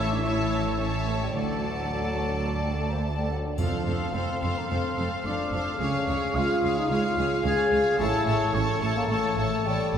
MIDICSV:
0, 0, Header, 1, 13, 480
1, 0, Start_track
1, 0, Tempo, 557621
1, 1167, Time_signature, 4, 2, 24, 8
1, 3577, Tempo, 551471
1, 8645, End_track
2, 0, Start_track
2, 0, Title_t, "Flute"
2, 0, Program_c, 0, 73
2, 0, Note_on_c, 0, 88, 60
2, 91, Note_on_c, 0, 86, 53
2, 104, Note_off_c, 0, 88, 0
2, 196, Note_off_c, 0, 86, 0
2, 202, Note_on_c, 0, 88, 62
2, 666, Note_off_c, 0, 88, 0
2, 671, Note_on_c, 0, 85, 48
2, 888, Note_off_c, 0, 85, 0
2, 893, Note_on_c, 0, 81, 44
2, 1028, Note_on_c, 0, 79, 39
2, 1041, Note_off_c, 0, 81, 0
2, 1155, Note_on_c, 0, 78, 52
2, 1168, Note_off_c, 0, 79, 0
2, 2028, Note_off_c, 0, 78, 0
2, 2251, Note_on_c, 0, 79, 38
2, 2369, Note_off_c, 0, 79, 0
2, 2377, Note_on_c, 0, 81, 38
2, 2429, Note_off_c, 0, 81, 0
2, 2480, Note_on_c, 0, 82, 40
2, 2531, Note_off_c, 0, 82, 0
2, 2603, Note_on_c, 0, 81, 39
2, 2655, Note_off_c, 0, 81, 0
2, 2726, Note_on_c, 0, 79, 37
2, 2847, Note_off_c, 0, 79, 0
2, 2851, Note_on_c, 0, 78, 39
2, 2903, Note_off_c, 0, 78, 0
2, 2963, Note_on_c, 0, 74, 34
2, 3071, Note_off_c, 0, 74, 0
2, 3076, Note_on_c, 0, 77, 51
2, 3393, Note_off_c, 0, 77, 0
2, 3577, Note_on_c, 0, 84, 52
2, 3945, Note_on_c, 0, 82, 43
2, 3959, Note_off_c, 0, 84, 0
2, 4054, Note_off_c, 0, 82, 0
2, 4059, Note_on_c, 0, 84, 54
2, 4537, Note_on_c, 0, 86, 55
2, 4550, Note_off_c, 0, 84, 0
2, 5015, Note_off_c, 0, 86, 0
2, 5023, Note_on_c, 0, 85, 62
2, 5488, Note_on_c, 0, 89, 63
2, 5501, Note_off_c, 0, 85, 0
2, 5849, Note_off_c, 0, 89, 0
2, 5860, Note_on_c, 0, 87, 62
2, 5972, Note_off_c, 0, 87, 0
2, 5982, Note_on_c, 0, 89, 70
2, 6440, Note_off_c, 0, 89, 0
2, 6457, Note_on_c, 0, 92, 77
2, 6917, Note_off_c, 0, 92, 0
2, 6933, Note_on_c, 0, 88, 73
2, 7397, Note_on_c, 0, 85, 72
2, 7410, Note_off_c, 0, 88, 0
2, 7647, Note_on_c, 0, 81, 64
2, 7660, Note_off_c, 0, 85, 0
2, 7777, Note_on_c, 0, 82, 64
2, 7790, Note_off_c, 0, 81, 0
2, 7884, Note_on_c, 0, 81, 77
2, 7898, Note_off_c, 0, 82, 0
2, 8374, Note_on_c, 0, 79, 63
2, 8387, Note_off_c, 0, 81, 0
2, 8645, Note_off_c, 0, 79, 0
2, 8645, End_track
3, 0, Start_track
3, 0, Title_t, "Violin section"
3, 0, Program_c, 1, 48
3, 0, Note_on_c, 1, 81, 53
3, 203, Note_off_c, 1, 81, 0
3, 213, Note_on_c, 1, 81, 48
3, 676, Note_off_c, 1, 81, 0
3, 686, Note_on_c, 1, 81, 47
3, 1157, Note_off_c, 1, 81, 0
3, 1179, Note_on_c, 1, 81, 43
3, 2892, Note_off_c, 1, 81, 0
3, 3081, Note_on_c, 1, 77, 40
3, 3310, Note_off_c, 1, 77, 0
3, 3320, Note_on_c, 1, 77, 34
3, 3551, Note_off_c, 1, 77, 0
3, 3562, Note_on_c, 1, 77, 39
3, 3790, Note_off_c, 1, 77, 0
3, 3801, Note_on_c, 1, 77, 39
3, 4039, Note_off_c, 1, 77, 0
3, 4050, Note_on_c, 1, 77, 40
3, 4274, Note_off_c, 1, 77, 0
3, 4284, Note_on_c, 1, 77, 40
3, 4520, Note_off_c, 1, 77, 0
3, 4530, Note_on_c, 1, 77, 43
3, 4765, Note_off_c, 1, 77, 0
3, 4775, Note_on_c, 1, 77, 42
3, 5003, Note_off_c, 1, 77, 0
3, 5014, Note_on_c, 1, 77, 52
3, 5231, Note_off_c, 1, 77, 0
3, 5241, Note_on_c, 1, 77, 42
3, 5483, Note_off_c, 1, 77, 0
3, 5497, Note_on_c, 1, 77, 52
3, 5724, Note_off_c, 1, 77, 0
3, 5734, Note_on_c, 1, 77, 49
3, 5957, Note_off_c, 1, 77, 0
3, 5967, Note_on_c, 1, 77, 54
3, 6192, Note_off_c, 1, 77, 0
3, 6203, Note_on_c, 1, 77, 51
3, 6425, Note_off_c, 1, 77, 0
3, 6435, Note_on_c, 1, 77, 56
3, 6659, Note_off_c, 1, 77, 0
3, 6669, Note_on_c, 1, 77, 50
3, 6909, Note_off_c, 1, 77, 0
3, 6910, Note_on_c, 1, 81, 69
3, 7141, Note_off_c, 1, 81, 0
3, 7151, Note_on_c, 1, 81, 55
3, 7377, Note_off_c, 1, 81, 0
3, 7388, Note_on_c, 1, 81, 59
3, 7614, Note_off_c, 1, 81, 0
3, 7624, Note_on_c, 1, 81, 53
3, 7869, Note_off_c, 1, 81, 0
3, 7879, Note_on_c, 1, 81, 61
3, 8108, Note_off_c, 1, 81, 0
3, 8118, Note_on_c, 1, 81, 53
3, 8351, Note_off_c, 1, 81, 0
3, 8361, Note_on_c, 1, 81, 54
3, 8589, Note_off_c, 1, 81, 0
3, 8600, Note_on_c, 1, 81, 41
3, 8645, Note_off_c, 1, 81, 0
3, 8645, End_track
4, 0, Start_track
4, 0, Title_t, "Oboe"
4, 0, Program_c, 2, 68
4, 0, Note_on_c, 2, 76, 60
4, 890, Note_off_c, 2, 76, 0
4, 1161, Note_on_c, 2, 74, 40
4, 2815, Note_off_c, 2, 74, 0
4, 3103, Note_on_c, 2, 77, 45
4, 6889, Note_off_c, 2, 77, 0
4, 6922, Note_on_c, 2, 73, 70
4, 8583, Note_off_c, 2, 73, 0
4, 8645, End_track
5, 0, Start_track
5, 0, Title_t, "Violin section"
5, 0, Program_c, 3, 48
5, 0, Note_on_c, 3, 76, 51
5, 215, Note_off_c, 3, 76, 0
5, 225, Note_on_c, 3, 76, 46
5, 685, Note_off_c, 3, 76, 0
5, 707, Note_on_c, 3, 76, 43
5, 1167, Note_off_c, 3, 76, 0
5, 1192, Note_on_c, 3, 74, 43
5, 2898, Note_off_c, 3, 74, 0
5, 3106, Note_on_c, 3, 72, 39
5, 3315, Note_off_c, 3, 72, 0
5, 3325, Note_on_c, 3, 72, 36
5, 3563, Note_off_c, 3, 72, 0
5, 3573, Note_on_c, 3, 72, 39
5, 3806, Note_off_c, 3, 72, 0
5, 3817, Note_on_c, 3, 72, 40
5, 4030, Note_off_c, 3, 72, 0
5, 4041, Note_on_c, 3, 72, 39
5, 4260, Note_off_c, 3, 72, 0
5, 4271, Note_on_c, 3, 72, 35
5, 4517, Note_off_c, 3, 72, 0
5, 4527, Note_on_c, 3, 72, 39
5, 4761, Note_off_c, 3, 72, 0
5, 4772, Note_on_c, 3, 72, 43
5, 5007, Note_off_c, 3, 72, 0
5, 5016, Note_on_c, 3, 73, 43
5, 5232, Note_off_c, 3, 73, 0
5, 5242, Note_on_c, 3, 73, 42
5, 5483, Note_off_c, 3, 73, 0
5, 5492, Note_on_c, 3, 73, 47
5, 5728, Note_off_c, 3, 73, 0
5, 5753, Note_on_c, 3, 73, 47
5, 5976, Note_off_c, 3, 73, 0
5, 5986, Note_on_c, 3, 73, 51
5, 6210, Note_off_c, 3, 73, 0
5, 6221, Note_on_c, 3, 73, 43
5, 6436, Note_off_c, 3, 73, 0
5, 6446, Note_on_c, 3, 73, 50
5, 6678, Note_off_c, 3, 73, 0
5, 6693, Note_on_c, 3, 73, 57
5, 6921, Note_off_c, 3, 73, 0
5, 6932, Note_on_c, 3, 73, 60
5, 7161, Note_off_c, 3, 73, 0
5, 7173, Note_on_c, 3, 73, 57
5, 7402, Note_off_c, 3, 73, 0
5, 7412, Note_on_c, 3, 73, 61
5, 7640, Note_off_c, 3, 73, 0
5, 7650, Note_on_c, 3, 73, 58
5, 7883, Note_off_c, 3, 73, 0
5, 7894, Note_on_c, 3, 73, 53
5, 8126, Note_off_c, 3, 73, 0
5, 8138, Note_on_c, 3, 73, 49
5, 8372, Note_off_c, 3, 73, 0
5, 8380, Note_on_c, 3, 73, 48
5, 8605, Note_off_c, 3, 73, 0
5, 8616, Note_on_c, 3, 73, 47
5, 8645, Note_off_c, 3, 73, 0
5, 8645, End_track
6, 0, Start_track
6, 0, Title_t, "Clarinet"
6, 0, Program_c, 4, 71
6, 0, Note_on_c, 4, 73, 56
6, 895, Note_off_c, 4, 73, 0
6, 1160, Note_on_c, 4, 69, 35
6, 1567, Note_off_c, 4, 69, 0
6, 1653, Note_on_c, 4, 69, 42
6, 2129, Note_on_c, 4, 74, 42
6, 2141, Note_off_c, 4, 69, 0
6, 2514, Note_on_c, 4, 72, 37
6, 2526, Note_off_c, 4, 74, 0
6, 2623, Note_on_c, 4, 74, 42
6, 2635, Note_off_c, 4, 72, 0
6, 3100, Note_off_c, 4, 74, 0
6, 5031, Note_on_c, 4, 68, 55
6, 6655, Note_off_c, 4, 68, 0
6, 6916, Note_on_c, 4, 69, 66
6, 8645, Note_off_c, 4, 69, 0
6, 8645, End_track
7, 0, Start_track
7, 0, Title_t, "Viola section"
7, 0, Program_c, 5, 48
7, 0, Note_on_c, 5, 73, 55
7, 197, Note_off_c, 5, 73, 0
7, 207, Note_on_c, 5, 73, 54
7, 672, Note_off_c, 5, 73, 0
7, 683, Note_on_c, 5, 73, 48
7, 1152, Note_on_c, 5, 69, 41
7, 1155, Note_off_c, 5, 73, 0
7, 2913, Note_off_c, 5, 69, 0
7, 3090, Note_on_c, 5, 69, 39
7, 3329, Note_off_c, 5, 69, 0
7, 3343, Note_on_c, 5, 69, 40
7, 3563, Note_off_c, 5, 69, 0
7, 3573, Note_on_c, 5, 69, 40
7, 3801, Note_off_c, 5, 69, 0
7, 3811, Note_on_c, 5, 69, 36
7, 4028, Note_off_c, 5, 69, 0
7, 4038, Note_on_c, 5, 69, 42
7, 4276, Note_off_c, 5, 69, 0
7, 4287, Note_on_c, 5, 69, 40
7, 4513, Note_off_c, 5, 69, 0
7, 4523, Note_on_c, 5, 69, 46
7, 4745, Note_off_c, 5, 69, 0
7, 4755, Note_on_c, 5, 69, 39
7, 4999, Note_off_c, 5, 69, 0
7, 5001, Note_on_c, 5, 68, 44
7, 5239, Note_off_c, 5, 68, 0
7, 5249, Note_on_c, 5, 68, 50
7, 5468, Note_off_c, 5, 68, 0
7, 5479, Note_on_c, 5, 68, 50
7, 5719, Note_off_c, 5, 68, 0
7, 5729, Note_on_c, 5, 68, 53
7, 5959, Note_off_c, 5, 68, 0
7, 5969, Note_on_c, 5, 68, 54
7, 6181, Note_off_c, 5, 68, 0
7, 6192, Note_on_c, 5, 68, 48
7, 6428, Note_off_c, 5, 68, 0
7, 6438, Note_on_c, 5, 68, 62
7, 6664, Note_off_c, 5, 68, 0
7, 6674, Note_on_c, 5, 68, 46
7, 6911, Note_off_c, 5, 68, 0
7, 6920, Note_on_c, 5, 69, 63
7, 7145, Note_off_c, 5, 69, 0
7, 7156, Note_on_c, 5, 69, 60
7, 7393, Note_off_c, 5, 69, 0
7, 7405, Note_on_c, 5, 69, 61
7, 7631, Note_off_c, 5, 69, 0
7, 7641, Note_on_c, 5, 69, 55
7, 7870, Note_off_c, 5, 69, 0
7, 7881, Note_on_c, 5, 69, 64
7, 8119, Note_off_c, 5, 69, 0
7, 8129, Note_on_c, 5, 69, 54
7, 8360, Note_off_c, 5, 69, 0
7, 8370, Note_on_c, 5, 69, 51
7, 8605, Note_off_c, 5, 69, 0
7, 8616, Note_on_c, 5, 69, 37
7, 8645, Note_off_c, 5, 69, 0
7, 8645, End_track
8, 0, Start_track
8, 0, Title_t, "French horn section"
8, 0, Program_c, 6, 60
8, 0, Note_on_c, 6, 64, 77
8, 101, Note_off_c, 6, 64, 0
8, 104, Note_on_c, 6, 62, 66
8, 217, Note_on_c, 6, 64, 72
8, 218, Note_off_c, 6, 62, 0
8, 681, Note_off_c, 6, 64, 0
8, 687, Note_on_c, 6, 61, 64
8, 922, Note_off_c, 6, 61, 0
8, 935, Note_on_c, 6, 57, 60
8, 1051, Note_off_c, 6, 57, 0
8, 1063, Note_on_c, 6, 55, 49
8, 1113, Note_off_c, 6, 55, 0
8, 1167, Note_on_c, 6, 54, 64
8, 2230, Note_off_c, 6, 54, 0
8, 2264, Note_on_c, 6, 55, 51
8, 2363, Note_on_c, 6, 57, 48
8, 2378, Note_off_c, 6, 55, 0
8, 2419, Note_off_c, 6, 57, 0
8, 2482, Note_on_c, 6, 58, 42
8, 2600, Note_on_c, 6, 57, 49
8, 2604, Note_off_c, 6, 58, 0
8, 2722, Note_on_c, 6, 55, 46
8, 2724, Note_off_c, 6, 57, 0
8, 2848, Note_off_c, 6, 55, 0
8, 2858, Note_on_c, 6, 54, 42
8, 2976, Note_off_c, 6, 54, 0
8, 2985, Note_on_c, 6, 50, 43
8, 3084, Note_on_c, 6, 53, 62
8, 3100, Note_off_c, 6, 50, 0
8, 3562, Note_off_c, 6, 53, 0
8, 3565, Note_on_c, 6, 60, 67
8, 3931, Note_off_c, 6, 60, 0
8, 3938, Note_on_c, 6, 58, 54
8, 4053, Note_on_c, 6, 60, 65
8, 4057, Note_off_c, 6, 58, 0
8, 4391, Note_off_c, 6, 60, 0
8, 4532, Note_on_c, 6, 62, 60
8, 5001, Note_on_c, 6, 61, 79
8, 5002, Note_off_c, 6, 62, 0
8, 5478, Note_off_c, 6, 61, 0
8, 5489, Note_on_c, 6, 65, 80
8, 5850, Note_off_c, 6, 65, 0
8, 5863, Note_on_c, 6, 63, 71
8, 5968, Note_on_c, 6, 65, 80
8, 5976, Note_off_c, 6, 63, 0
8, 6433, Note_on_c, 6, 68, 84
8, 6442, Note_off_c, 6, 65, 0
8, 6905, Note_off_c, 6, 68, 0
8, 6911, Note_on_c, 6, 64, 96
8, 7395, Note_off_c, 6, 64, 0
8, 7395, Note_on_c, 6, 61, 82
8, 7505, Note_off_c, 6, 61, 0
8, 7624, Note_on_c, 6, 57, 84
8, 7751, Note_off_c, 6, 57, 0
8, 7762, Note_on_c, 6, 58, 81
8, 7817, Note_off_c, 6, 58, 0
8, 7862, Note_on_c, 6, 57, 76
8, 8350, Note_off_c, 6, 57, 0
8, 8369, Note_on_c, 6, 55, 76
8, 8645, Note_off_c, 6, 55, 0
8, 8645, End_track
9, 0, Start_track
9, 0, Title_t, "Harp"
9, 0, Program_c, 7, 46
9, 0, Note_on_c, 7, 45, 57
9, 0, Note_on_c, 7, 52, 43
9, 0, Note_on_c, 7, 61, 40
9, 0, Note_on_c, 7, 73, 43
9, 37, Note_on_c, 7, 57, 44
9, 191, Note_off_c, 7, 52, 0
9, 201, Note_on_c, 7, 52, 44
9, 345, Note_off_c, 7, 57, 0
9, 355, Note_on_c, 7, 57, 32
9, 502, Note_off_c, 7, 52, 0
9, 513, Note_on_c, 7, 52, 37
9, 664, Note_off_c, 7, 57, 0
9, 674, Note_on_c, 7, 57, 42
9, 821, Note_off_c, 7, 73, 0
9, 980, Note_off_c, 7, 57, 0
9, 990, Note_on_c, 7, 57, 31
9, 1144, Note_on_c, 7, 50, 44
9, 1178, Note_off_c, 7, 52, 0
9, 1182, Note_off_c, 7, 45, 0
9, 1187, Note_off_c, 7, 61, 0
9, 1311, Note_on_c, 7, 62, 31
9, 1461, Note_off_c, 7, 57, 0
9, 1471, Note_on_c, 7, 57, 27
9, 1626, Note_off_c, 7, 62, 0
9, 1801, Note_on_c, 7, 69, 30
9, 1970, Note_on_c, 7, 62, 29
9, 2117, Note_off_c, 7, 57, 0
9, 2127, Note_on_c, 7, 57, 31
9, 2281, Note_off_c, 7, 62, 0
9, 2291, Note_on_c, 7, 62, 27
9, 2435, Note_off_c, 7, 57, 0
9, 2445, Note_on_c, 7, 57, 26
9, 2598, Note_off_c, 7, 62, 0
9, 2608, Note_on_c, 7, 62, 31
9, 2746, Note_off_c, 7, 69, 0
9, 2757, Note_on_c, 7, 69, 28
9, 2914, Note_off_c, 7, 62, 0
9, 2924, Note_on_c, 7, 62, 26
9, 3083, Note_on_c, 7, 53, 45
9, 3102, Note_off_c, 7, 50, 0
9, 3109, Note_off_c, 7, 62, 0
9, 3242, Note_on_c, 7, 60, 31
9, 3396, Note_off_c, 7, 57, 0
9, 3406, Note_on_c, 7, 57, 32
9, 3551, Note_off_c, 7, 60, 0
9, 3561, Note_on_c, 7, 60, 32
9, 3714, Note_off_c, 7, 69, 0
9, 3724, Note_on_c, 7, 69, 34
9, 3877, Note_off_c, 7, 60, 0
9, 3888, Note_on_c, 7, 60, 34
9, 4029, Note_off_c, 7, 57, 0
9, 4040, Note_on_c, 7, 57, 39
9, 4197, Note_off_c, 7, 60, 0
9, 4207, Note_on_c, 7, 60, 29
9, 4351, Note_off_c, 7, 57, 0
9, 4361, Note_on_c, 7, 57, 30
9, 4520, Note_off_c, 7, 60, 0
9, 4531, Note_on_c, 7, 60, 41
9, 4669, Note_off_c, 7, 69, 0
9, 4680, Note_on_c, 7, 69, 39
9, 4834, Note_off_c, 7, 60, 0
9, 4845, Note_on_c, 7, 60, 31
9, 5006, Note_on_c, 7, 49, 53
9, 5025, Note_off_c, 7, 57, 0
9, 5025, Note_off_c, 7, 69, 0
9, 5028, Note_off_c, 7, 60, 0
9, 5154, Note_on_c, 7, 61, 41
9, 5322, Note_on_c, 7, 56, 37
9, 5476, Note_off_c, 7, 61, 0
9, 5486, Note_on_c, 7, 61, 41
9, 5652, Note_on_c, 7, 68, 43
9, 5795, Note_off_c, 7, 61, 0
9, 5805, Note_on_c, 7, 61, 43
9, 5951, Note_off_c, 7, 56, 0
9, 5961, Note_on_c, 7, 56, 46
9, 6113, Note_off_c, 7, 61, 0
9, 6123, Note_on_c, 7, 61, 43
9, 6270, Note_off_c, 7, 56, 0
9, 6281, Note_on_c, 7, 56, 41
9, 6426, Note_off_c, 7, 61, 0
9, 6437, Note_on_c, 7, 61, 49
9, 6472, Note_off_c, 7, 53, 0
9, 6577, Note_off_c, 7, 68, 0
9, 6730, Note_off_c, 7, 61, 0
9, 6741, Note_on_c, 7, 61, 45
9, 6907, Note_on_c, 7, 45, 62
9, 6935, Note_off_c, 7, 49, 0
9, 6936, Note_off_c, 7, 56, 0
9, 7064, Note_on_c, 7, 57, 49
9, 7217, Note_on_c, 7, 52, 46
9, 7375, Note_off_c, 7, 57, 0
9, 7386, Note_on_c, 7, 57, 48
9, 7546, Note_on_c, 7, 69, 52
9, 7696, Note_off_c, 7, 57, 0
9, 7707, Note_on_c, 7, 57, 53
9, 7862, Note_off_c, 7, 52, 0
9, 7872, Note_on_c, 7, 52, 52
9, 8020, Note_off_c, 7, 57, 0
9, 8031, Note_on_c, 7, 57, 41
9, 8187, Note_off_c, 7, 52, 0
9, 8197, Note_on_c, 7, 52, 40
9, 8352, Note_off_c, 7, 57, 0
9, 8362, Note_on_c, 7, 57, 47
9, 8517, Note_off_c, 7, 69, 0
9, 8528, Note_on_c, 7, 69, 42
9, 8645, Note_off_c, 7, 45, 0
9, 8645, Note_off_c, 7, 52, 0
9, 8645, Note_off_c, 7, 57, 0
9, 8645, Note_off_c, 7, 61, 0
9, 8645, Note_off_c, 7, 69, 0
9, 8645, End_track
10, 0, Start_track
10, 0, Title_t, "Cello section"
10, 0, Program_c, 8, 48
10, 0, Note_on_c, 8, 45, 61
10, 1135, Note_off_c, 8, 45, 0
10, 1169, Note_on_c, 8, 38, 42
10, 2886, Note_off_c, 8, 38, 0
10, 3092, Note_on_c, 8, 41, 49
10, 3161, Note_off_c, 8, 41, 0
10, 3334, Note_on_c, 8, 41, 42
10, 3403, Note_off_c, 8, 41, 0
10, 3574, Note_on_c, 8, 41, 45
10, 3644, Note_off_c, 8, 41, 0
10, 3816, Note_on_c, 8, 41, 42
10, 3886, Note_off_c, 8, 41, 0
10, 4056, Note_on_c, 8, 41, 42
10, 4125, Note_off_c, 8, 41, 0
10, 4298, Note_on_c, 8, 41, 39
10, 4367, Note_off_c, 8, 41, 0
10, 4535, Note_on_c, 8, 41, 49
10, 4604, Note_off_c, 8, 41, 0
10, 4776, Note_on_c, 8, 41, 40
10, 4845, Note_off_c, 8, 41, 0
10, 5018, Note_on_c, 8, 37, 47
10, 5088, Note_off_c, 8, 37, 0
10, 5254, Note_on_c, 8, 37, 52
10, 5324, Note_off_c, 8, 37, 0
10, 5501, Note_on_c, 8, 37, 50
10, 5570, Note_off_c, 8, 37, 0
10, 5731, Note_on_c, 8, 37, 54
10, 5801, Note_off_c, 8, 37, 0
10, 5969, Note_on_c, 8, 37, 56
10, 6038, Note_off_c, 8, 37, 0
10, 6205, Note_on_c, 8, 37, 53
10, 6274, Note_off_c, 8, 37, 0
10, 6441, Note_on_c, 8, 37, 66
10, 6510, Note_off_c, 8, 37, 0
10, 6689, Note_on_c, 8, 37, 51
10, 6759, Note_off_c, 8, 37, 0
10, 6921, Note_on_c, 8, 45, 74
10, 6990, Note_off_c, 8, 45, 0
10, 7159, Note_on_c, 8, 45, 62
10, 7229, Note_off_c, 8, 45, 0
10, 7397, Note_on_c, 8, 45, 58
10, 7466, Note_off_c, 8, 45, 0
10, 7634, Note_on_c, 8, 45, 62
10, 7703, Note_off_c, 8, 45, 0
10, 7872, Note_on_c, 8, 45, 58
10, 7942, Note_off_c, 8, 45, 0
10, 8118, Note_on_c, 8, 45, 52
10, 8188, Note_off_c, 8, 45, 0
10, 8362, Note_on_c, 8, 45, 52
10, 8432, Note_off_c, 8, 45, 0
10, 8611, Note_on_c, 8, 45, 40
10, 8645, Note_off_c, 8, 45, 0
10, 8645, End_track
11, 0, Start_track
11, 0, Title_t, "Timpani"
11, 0, Program_c, 10, 47
11, 3085, Note_on_c, 10, 41, 51
11, 3778, Note_off_c, 10, 41, 0
11, 8645, End_track
12, 0, Start_track
12, 0, Title_t, "Double bass section"
12, 0, Program_c, 11, 48
12, 0, Note_on_c, 11, 33, 64
12, 1128, Note_off_c, 11, 33, 0
12, 1161, Note_on_c, 11, 38, 42
12, 2883, Note_off_c, 11, 38, 0
12, 3085, Note_on_c, 11, 29, 46
12, 3154, Note_off_c, 11, 29, 0
12, 3327, Note_on_c, 11, 29, 42
12, 3396, Note_off_c, 11, 29, 0
12, 3568, Note_on_c, 11, 29, 45
12, 3637, Note_off_c, 11, 29, 0
12, 3816, Note_on_c, 11, 29, 40
12, 3886, Note_off_c, 11, 29, 0
12, 4051, Note_on_c, 11, 29, 47
12, 4121, Note_off_c, 11, 29, 0
12, 4287, Note_on_c, 11, 29, 48
12, 4357, Note_off_c, 11, 29, 0
12, 4526, Note_on_c, 11, 29, 44
12, 4595, Note_off_c, 11, 29, 0
12, 4758, Note_on_c, 11, 29, 45
12, 4827, Note_off_c, 11, 29, 0
12, 5002, Note_on_c, 11, 37, 55
12, 5071, Note_off_c, 11, 37, 0
12, 5240, Note_on_c, 11, 37, 51
12, 5309, Note_off_c, 11, 37, 0
12, 5478, Note_on_c, 11, 37, 58
12, 5547, Note_off_c, 11, 37, 0
12, 5724, Note_on_c, 11, 37, 54
12, 5794, Note_off_c, 11, 37, 0
12, 5959, Note_on_c, 11, 37, 60
12, 6028, Note_off_c, 11, 37, 0
12, 6202, Note_on_c, 11, 37, 62
12, 6271, Note_off_c, 11, 37, 0
12, 6436, Note_on_c, 11, 37, 65
12, 6505, Note_off_c, 11, 37, 0
12, 6673, Note_on_c, 11, 37, 58
12, 6743, Note_off_c, 11, 37, 0
12, 6910, Note_on_c, 11, 33, 64
12, 6979, Note_off_c, 11, 33, 0
12, 7148, Note_on_c, 11, 33, 62
12, 7217, Note_off_c, 11, 33, 0
12, 7394, Note_on_c, 11, 33, 66
12, 7463, Note_off_c, 11, 33, 0
12, 7623, Note_on_c, 11, 33, 62
12, 7693, Note_off_c, 11, 33, 0
12, 7859, Note_on_c, 11, 33, 62
12, 7929, Note_off_c, 11, 33, 0
12, 8117, Note_on_c, 11, 33, 65
12, 8187, Note_off_c, 11, 33, 0
12, 8352, Note_on_c, 11, 33, 54
12, 8421, Note_off_c, 11, 33, 0
12, 8606, Note_on_c, 11, 33, 49
12, 8645, Note_off_c, 11, 33, 0
12, 8645, End_track
13, 0, Start_track
13, 0, Title_t, "Drums"
13, 3082, Note_on_c, 9, 81, 30
13, 3168, Note_off_c, 9, 81, 0
13, 8645, End_track
0, 0, End_of_file